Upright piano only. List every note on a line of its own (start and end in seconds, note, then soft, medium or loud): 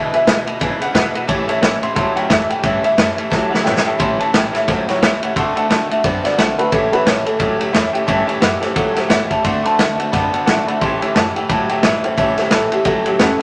0.00 0.12 E5 medium
0.14 0.46 E5 loud
1.83 1.94 C6 loud
1.96 2.16 C6 loud
2.16 2.29 G5 medium
2.29 2.49 E5 loud
2.50 2.63 G5 medium
2.63 2.82 E5 loud
2.84 3.17 E5 loud
4.00 4.19 C6 medium
4.20 4.33 A5 medium
4.35 4.54 G5 medium
4.56 4.68 E5 loud
4.69 4.88 C5 medium
4.88 5.01 E4 medium
4.88 5.01 C#5 loud
5.36 5.55 C6 medium
5.56 5.69 A5 medium
5.91 6.04 E5 medium
6.04 6.24 C5 medium
6.24 6.37 D5 loud
6.58 6.72 B4 loud
6.72 6.92 A4 medium
6.93 7.06 B4 loud
7.06 7.26 C#5 medium
7.26 7.59 A4 loud
8.63 8.76 C5 medium
8.77 8.96 A4 medium
8.98 9.11 C5 medium
9.11 9.30 E5 loud
9.31 9.44 A5 loud
9.45 9.64 C6 medium
9.66 10.65 A5 loud
10.81 11.14 C6 medium
11.15 11.35 A5 medium
11.36 11.49 G5 medium
11.50 11.69 A5 medium
11.69 11.83 G5 medium
11.83 12.03 E5 medium
12.04 12.17 C5 medium
12.17 12.37 E5 medium
12.38 12.51 C5 medium
12.52 12.71 A4 loud
12.72 12.86 G4 loud
12.86 13.06 A4 medium
13.07 13.20 G4 medium
13.20 13.42 C#4 loud
13.20 13.42 A4 loud